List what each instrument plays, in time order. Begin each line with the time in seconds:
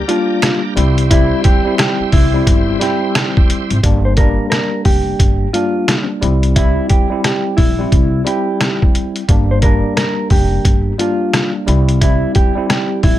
Already playing: tonewheel organ G4 A#4 D5 A#5
0.08 tine electric piano G3 A#3 D4, clean electric guitar F4, closed hi-hat
0.42 finger snap, cross-stick, snare, closed hi-hat
0.75 upright bass C2, tine electric piano G3 C4 E4, tonewheel organ C5 E5 C6, closed hi-hat
0.98 closed hi-hat
1.11 tine electric piano G3 C4 E4, clean electric guitar E4, kick, closed hi-hat
1.44 clean electric guitar G4, kick, closed hi-hat
1.64 tine electric piano G3 C4 E4
1.78 clean electric guitar G4, finger snap, cross-stick, snare, closed hi-hat
2.00 muted upright bass stroke
2.12 upright bass C2, clean electric guitar E4, kick, open hi-hat
2.33 tine electric piano G3 C4 E4
2.47 upright bass G1, kick, closed hi-hat
2.79 tine electric piano G3 C4 E4, clean electric guitar G4, snare, closed hi-hat
3.15 finger snap, cross-stick, snare, closed hi-hat
3.37 kick
3.50 closed hi-hat
3.70 upright bass G#1, closed hi-hat
3.83 upright bass G1, tine electric piano G3 A#3 D4, kick, closed hi-hat
4.05 clean electric guitar C5
4.17 tine electric piano G3 A#3 D4, clean electric guitar A#4, kick, closed hi-hat
4.50 clean electric guitar A#4, cross-stick, snare, closed hi-hat
4.85 upright bass F1, clean electric guitar G4, kick, open hi-hat
5.19 upright bass G1, kick, closed hi-hat
5.53 tine electric piano G3 A#3 D4, clean electric guitar F4, closed hi-hat
5.88 cross-stick, snare, closed hi-hat
6.21 upright bass C2, tine electric piano G3 C4 E4, closed hi-hat
6.43 closed hi-hat
6.56 tine electric piano G3 C4 E4, clean electric guitar E4, kick, closed hi-hat
6.89 clean electric guitar G4, kick, closed hi-hat
7.10 tine electric piano G3 C4 E4
7.24 clean electric guitar G4, cross-stick, snare, closed hi-hat
7.57 upright bass A#1, clean electric guitar E4, kick, open hi-hat
7.78 tine electric piano G3 C4 E4
7.92 upright bass C2, kick, closed hi-hat
8.24 tine electric piano G3 C4 E4, clean electric guitar G4, closed hi-hat
8.61 cross-stick, snare, closed hi-hat
8.82 kick
8.95 closed hi-hat
9.16 closed hi-hat
9.28 upright bass G1, tine electric piano G3 A#3 D4, kick, closed hi-hat
9.51 clean electric guitar C5
9.62 tine electric piano G3 A#3 D4, clean electric guitar A#4, kick, closed hi-hat
9.97 clean electric guitar A#4, cross-stick, snare, closed hi-hat
10.30 upright bass F1, clean electric guitar G4, kick, open hi-hat
10.65 upright bass G1, kick, closed hi-hat
10.98 tine electric piano G3 A#3 D4, clean electric guitar F4, closed hi-hat
11.33 cross-stick, snare, closed hi-hat
11.66 upright bass C2, tine electric piano G3 C4 E4, closed hi-hat
11.89 closed hi-hat
12.01 tine electric piano G3 C4 E4, clean electric guitar E4, kick, closed hi-hat
12.35 clean electric guitar G4, kick, closed hi-hat
12.55 tine electric piano G3 C4 E4
12.69 clean electric guitar G4, cross-stick, snare, closed hi-hat
13.03 upright bass A#1, clean electric guitar E4, kick, open hi-hat